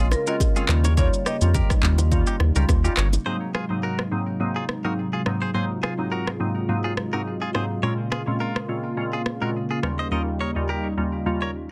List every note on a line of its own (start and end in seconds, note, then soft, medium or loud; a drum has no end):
0.00 0.15 A#1 loud
0.00 3.22 C#3 medium
0.00 0.23 G#3 loud
0.00 0.65 G#3 medium
0.00 0.67 A#3 medium
0.00 0.24 C4 medium
0.00 0.24 C#4 medium
0.00 0.24 F4 loud
0.00 0.67 F4 loud
0.11 0.20 A#4 medium
0.11 cross-stick medium
0.11 low bongo medium
0.11 shaker medium
0.27 0.46 G#3 medium
0.27 0.46 C4 medium
0.27 0.46 C#4 medium
0.27 0.46 F4 medium
0.27 0.36 F#4 medium
0.27 0.35 A#4 medium
0.27 1.00 D#5 loud
0.27 shaker medium
0.40 kick medium
0.40 high bongo medium
0.40 shaker medium
0.56 0.74 G#3 medium
0.56 0.74 C4 medium
0.56 0.68 C#4 medium
0.56 0.68 F4 medium
0.56 0.65 F4 medium
0.56 0.64 G#4 medium
0.56 shaker medium
0.69 1.10 D#2 loud
0.69 0.95 G3 loud
0.69 3.23 G3 medium
0.69 3.23 A#3 medium
0.69 0.95 A#3 medium
0.69 0.95 C#4 medium
0.69 3.23 D#4 loud
0.69 0.96 F4 loud
0.69 cross-stick medium
0.69 clap medium
0.84 0.93 A#4 medium
0.84 0.93 C#5 medium
0.84 high bongo medium
0.84 low bongo medium
0.84 shaker medium
0.97 1.17 G3 loud
0.97 1.18 A#3 medium
0.97 1.18 C#4 medium
0.97 1.18 F4 loud
0.97 1.07 A#4 medium
0.97 1.07 C#5 medium
0.97 1.28 C#5 loud
0.97 kick loud
0.97 low conga medium
0.97 shaker medium
1.14 shaker medium
1.26 1.36 D#4 medium
1.26 1.36 G4 medium
1.26 2.08 D#5 loud
1.26 cross-stick loud
1.26 shaker medium
1.41 1.62 F2 loud
1.41 1.60 G3 medium
1.41 1.60 A#3 medium
1.41 1.60 C#4 medium
1.41 1.60 F4 medium
1.41 shaker medium
1.54 1.73 G4 medium
1.54 1.72 A#4 medium
1.54 kick loud
1.54 high bongo medium
1.54 low conga medium
1.54 shaker medium
1.70 kick loud
1.70 cross-stick loud
1.70 shaker medium
1.83 2.24 D#2 loud
1.83 2.03 G3 medium
1.83 2.03 A#3 medium
1.83 2.03 C#4 medium
1.83 2.03 F4 medium
1.83 clap medium
1.83 low bongo medium
1.98 low bongo loud
1.98 shaker medium
2.11 2.52 G3 loud
2.11 2.52 A#3 medium
2.11 2.52 C#4 medium
2.11 2.52 F4 loud
2.11 kick loud
2.11 low conga medium
2.11 shaker medium
2.27 2.36 D#4 medium
2.27 2.35 G4 medium
2.27 shaker medium
2.40 2.51 D#2 medium
2.40 cross-stick medium
2.40 high bongo medium
2.40 low bongo medium
2.56 2.65 C#2 medium
2.56 2.74 G3 medium
2.56 2.74 A#3 medium
2.56 2.74 C#4 medium
2.56 2.75 F4 medium
2.56 2.64 G4 medium
2.56 2.64 A#4 medium
2.56 shaker medium
2.69 2.89 D#2 loud
2.69 kick loud
2.69 cross-stick loud
2.69 high bongo medium
2.69 shaker medium
2.84 3.03 G3 medium
2.84 3.03 A#3 medium
2.84 3.03 C#4 medium
2.84 2.93 D#4 medium
2.84 3.03 F4 medium
2.84 2.92 G4 medium
2.84 shaker medium
2.97 3.18 G1 loud
2.97 3.08 A#4 medium
2.97 3.07 C#5 medium
2.97 cross-stick medium
2.97 clap medium
3.13 high bongo medium
3.13 low bongo medium
3.13 shaker medium
3.26 3.66 G#2 medium
3.26 7.79 C3 medium
3.26 3.66 F#3 medium
3.26 7.79 F#3 medium
3.26 9.79 G#3 medium
3.26 3.66 A#3 medium
3.26 3.67 C4 medium
3.26 5.52 D#4 medium
3.26 3.67 D#4 medium
3.26 3.36 G#4 medium
3.26 3.36 C5 loud
3.55 3.65 F4 medium
3.55 3.64 G#4 medium
3.55 cross-stick medium
3.70 4.08 G#2 medium
3.70 4.08 F#3 medium
3.70 4.09 A#3 medium
3.70 4.09 C4 medium
3.70 4.09 D#4 medium
3.83 4.01 F#4 medium
3.83 4.01 A#4 medium
3.99 cross-stick medium
4.11 4.38 G#2 medium
4.11 4.38 F#3 medium
4.11 4.38 A#3 medium
4.11 4.38 C4 medium
4.11 4.38 D#4 medium
4.40 4.81 G#2 medium
4.40 4.81 F#3 medium
4.40 4.81 A#3 medium
4.40 4.81 C4 medium
4.40 4.81 D#4 loud
4.56 4.64 F4 medium
4.56 4.64 G#4 medium
4.69 cross-stick medium
4.84 5.03 G#2 medium
4.84 5.03 F#3 medium
4.84 5.03 A#3 medium
4.84 5.03 C4 medium
4.84 5.03 D#4 medium
4.84 4.93 F#4 medium
4.84 4.92 A#4 medium
5.13 5.22 F4 soft
5.13 5.21 G#4 medium
5.26 5.46 G#2 medium
5.26 5.46 F#3 medium
5.26 5.46 A#3 medium
5.26 5.46 C4 medium
5.26 5.46 D#4 medium
5.26 cross-stick medium
5.42 5.50 G#4 medium
5.42 5.50 C5 medium
5.54 5.95 G#2 medium
5.54 5.95 F#3 medium
5.54 5.95 A#3 medium
5.54 5.95 C4 medium
5.54 5.95 D#4 loud
5.54 7.81 F4 medium
5.54 5.65 G#4 medium
5.54 5.64 C5 medium
5.83 5.93 F4 medium
5.83 5.93 G#4 medium
5.83 cross-stick medium
5.98 6.37 G#2 medium
5.98 6.37 F#3 medium
5.98 6.37 A#3 medium
5.98 6.37 C4 medium
5.98 6.37 D#4 medium
6.12 6.30 F#4 medium
6.12 6.29 A#4 medium
6.27 cross-stick medium
6.40 6.67 G#2 medium
6.40 6.67 F#3 medium
6.40 6.67 A#3 medium
6.40 6.67 C4 medium
6.40 6.67 D#4 medium
6.69 7.09 G#2 medium
6.69 7.09 F#3 medium
6.69 7.09 A#3 medium
6.69 7.10 C4 medium
6.69 7.10 D#4 loud
6.84 6.93 F4 medium
6.84 6.92 G#4 medium
6.97 cross-stick medium
7.13 7.31 G#2 medium
7.13 7.31 F#3 medium
7.13 7.31 A#3 medium
7.13 7.32 C4 medium
7.13 7.32 D#4 medium
7.13 7.22 F#4 medium
7.13 7.21 A#4 medium
7.42 7.50 F4 medium
7.42 7.49 G#4 medium
7.54 7.75 G#2 medium
7.54 7.75 F#3 medium
7.54 7.75 A#3 medium
7.54 7.75 C4 medium
7.54 7.75 D#4 medium
7.54 7.65 G#4 medium
7.54 7.64 C5 medium
7.54 cross-stick medium
7.83 8.24 A#2 medium
7.83 11.71 C#3 medium
7.83 8.24 G#3 medium
7.83 11.71 A#3 medium
7.83 8.24 C4 medium
7.83 8.24 C#4 medium
7.83 8.24 F4 loud
7.83 9.81 F4 medium
7.83 7.93 A#4 medium
7.83 7.93 C#5 loud
8.12 8.22 F4 medium
8.12 8.21 G#4 medium
8.12 cross-stick loud
8.27 8.66 A#2 medium
8.27 8.66 G#3 medium
8.27 8.66 C4 medium
8.27 8.66 C#4 medium
8.27 8.66 F4 medium
8.40 8.58 F4 medium
8.40 8.58 A#4 medium
8.56 cross-stick medium
8.68 8.95 A#2 medium
8.68 8.95 G#3 medium
8.68 8.95 C4 medium
8.68 8.95 C#4 medium
8.68 8.96 F4 medium
8.97 9.38 A#2 medium
8.97 9.38 G#3 medium
8.97 9.38 C4 medium
8.97 9.38 C#4 medium
8.97 9.38 F4 loud
9.13 9.22 F4 medium
9.13 9.21 G#4 medium
9.26 cross-stick medium
9.41 9.60 A#2 medium
9.41 9.60 G#3 medium
9.41 9.60 C4 medium
9.41 9.60 C#4 medium
9.41 9.60 F4 medium
9.41 9.50 F#4 medium
9.41 9.50 A#4 medium
9.71 9.79 F4 medium
9.71 9.78 G#4 medium
9.83 10.03 D#2 medium
9.83 10.03 G3 medium
9.83 11.71 G3 medium
9.83 10.03 A#3 medium
9.83 10.03 C#4 medium
9.83 11.71 D#4 medium
9.83 10.03 F4 medium
9.83 cross-stick medium
9.99 10.08 C5 medium
9.99 10.07 D#5 medium
10.11 10.52 D#2 medium
10.11 10.52 G3 medium
10.11 10.52 A#3 medium
10.11 10.52 C#4 medium
10.11 10.52 F4 loud
10.11 10.22 A#4 medium
10.11 10.21 D#5 medium
10.41 10.51 A#4 medium
10.41 10.50 C#5 medium
10.56 10.94 D#2 medium
10.56 10.94 G3 medium
10.56 10.94 A#3 medium
10.56 10.95 C#4 medium
10.56 10.95 F4 medium
10.69 10.87 G4 medium
10.69 10.86 A#4 medium
10.97 11.24 D#2 medium
10.97 11.24 G3 medium
10.97 11.24 A#3 medium
10.97 11.24 C#4 medium
10.97 11.24 F4 medium
11.26 11.67 D#2 medium
11.26 11.67 G3 medium
11.26 11.67 A#3 medium
11.26 11.67 C#4 medium
11.26 11.67 F4 loud
11.42 11.50 A#4 medium
11.42 11.50 C#5 medium